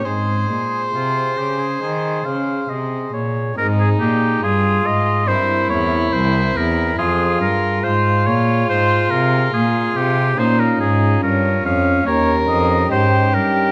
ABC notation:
X:1
M:4/4
L:1/16
Q:1/4=70
K:Ab
V:1 name="Oboe"
A4 F2 G A A2 f2 e2 d2 | B A G2 A2 e2 c2 d2 c2 B2 | A2 B2 c2 d2 c2 B2 A2 G2 | c B A2 B2 f2 d2 e2 c2 B2 |]
V:2 name="Violin"
c12- c2 z2 | E4 F4 =E8 | F4 F12 | E4 D4 B4 G4 |]
V:3 name="Pipe organ"
[A,CEA]16 | [A,CEA]8 [C=EB]8 | [CFA]16 | [DF]8 [DEG]8 |]
V:4 name="Pipe organ" clef=bass
A,,2 B,,2 C,2 D,2 E,2 D,2 C,2 B,,2 | A,,2 B,,2 G,,2 A,,2 G,,2 =E,,2 C,,2 E,,2 | F,,2 G,,2 A,,2 B,,2 A,,2 C,2 B,,2 C,2 | B,,2 A,,2 G,,2 F,,2 E,,2 F,,2 A,,2 G,,2 |]
V:5 name="Cello" clef=bass
A,,2 B,,2 C,2 D,2 E,2 D,2 C,2 B,,2 | A,,2 B,,2 G,,2 A,,2 G,,2 =E,,2 C,,2 E,,2 | F,,2 G,,2 A,,2 B,,2 A,,2 C,2 B,,2 C,2 | B,,2 A,,2 G,,2 F,,2 E,,2 F,,2 A,,2 G,,2 |]